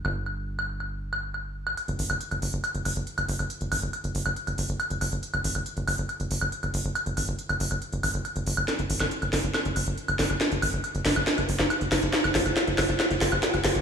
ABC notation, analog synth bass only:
X:1
M:4/4
L:1/16
Q:1/4=139
K:Ablyd
V:1 name="Analog synth bass" clef=bass
G,,,16 | z G,,, A,,, G,,, z G,,, G,,, G,,, z G,,, G,,, G,,, z G,,, G,,, G,,, | z G,,, A,,, G,,, z G,,, G,,, G,,, z G,,, G,,, G,,, z G,,, G,,, G,,, | z G,,, A,,, G,,, z G,,, G,,, G,,, z G,,, G,,, G,,, z G,,, G,,, G,,, |
z G,,, A,,, G,,, z G,,, G,,, G,,, z G,,, A,,, G,,, z G,,, G,,, G,,, | z G,,, A,,, G,,, z G,,, G,,, G,,, z G,,, G,,, G,,, z G,,, G,,, G,,, | z G,,, A,,, G,,, z G,,, G,,, G,,, z G,,, G,,, G,,, z G,,, G,,, G,,, | z G,,, A,,, G,,, z G,,, G,,, G,,, z G,,, G,,, G,,, z G,,, G,,, G,,, |]